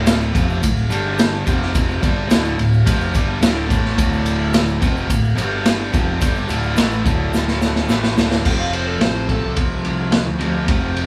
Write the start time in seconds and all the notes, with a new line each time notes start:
Already playing: D1 D2 A2 D3
0.07 snare, ride, shaker
0.21 shaker
0.33 F1 F2 C3 F3, kick, ride, shaker
0.50 shaker
0.62 D1 D2 A2, kick, ride, shaker
0.77 shaker
0.90 G1 G2 D3 G3, ride, shaker
1.18 snare, ride, shaker
1.45 F1 F2 C3 F3, kick, ride, shaker
1.62 snare
1.75 kick, ride, shaker
1.90 shaker
2.02 G1 G2 D3 G3, kick, ride, shaker
2.28 D1 D2 A2 D3, snare, ride, shaker
2.45 shaker
2.57 D1 D2 A2, ride
2.73 shaker
2.85 F1 F2 C3 F3, kick, ride, shaker
3.01 shaker
3.14 G1 G2 D3 G3, kick, ride, shaker
3.41 D1 D2 A2 D3, snare, ride, shaker
3.68 A1 A2 E3 A3, kick, ride, shaker
3.85 snare
3.97 D1 D2 A2 D3, kick, ride, shaker
4.13 shaker
4.26 ride, shaker
4.54 snare, ride, shaker
4.68 shaker
4.80 F1 F2 C3 F3, kick, ride, shaker
4.97 shaker
5.08 D1 D2 A2, kick, ride, shaker
5.24 shaker
5.36 G1 G2 D3 G3, ride, shaker
5.66 snare, ride, shaker
5.92 F1 F2 C3 F3, kick, ride, shaker
6.20 G1 G2 D3 G3, kick, ride, shaker
6.35 shaker
6.48 D1 D2 A2 D3, ride, shaker
6.63 shaker
6.76 A1 A2 E3 A3, snare, ride, shaker
6.91 shaker
7.04 D1 D2 A2 D3, kick, ride, shaker
7.33 snare, shaker
7.48 snare, shaker
7.61 snare, shaker
7.76 snare
7.88 A1 A2 E3 A3, snare, shaker
8.03 snare, shaker
8.16 D1 D2 A2 D3, snare, shaker
8.31 snare, shaker
8.43 F1 F2 C3 F3 G5, kick, crash
8.60 F5
8.73 C5, ride
8.87 A4
9.00 A1 C5, snare, ride
9.29 A4, kick, ride
9.43 C2
9.56 kick, ride
9.85 C2, ride
10.12 snare, ride
10.27 D2
10.39 F2 C3 F3, ride
10.67 F1 F2 C3 F3, kick, ride
10.96 ride